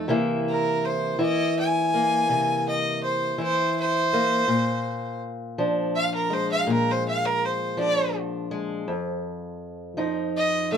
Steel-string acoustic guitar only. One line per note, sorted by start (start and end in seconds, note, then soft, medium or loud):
0.08 1.19 C3 medium
0.08 1.17 E3 medium
0.08 1.93 A#3 medium
0.08 1.17 E4 medium
1.19 3.37 E3 medium
1.19 3.37 E4 medium
1.94 4.12 A#3 medium
2.29 3.39 C3 medium
3.38 4.44 E3 medium
3.38 4.44 E4 medium
4.13 4.45 A#3 medium
4.48 6.66 A#2 medium
5.58 7.77 F3 medium
5.58 7.76 D4 medium
6.30 8.50 G#3 medium
6.67 8.88 A#2 medium
7.77 9.97 F3 medium
7.77 8.84 D4 medium
8.51 8.88 G#3 medium
8.88 10.77 F2 medium
9.97 10.77 F3 medium
9.97 10.77 D#4 medium
10.72 10.77 A3 medium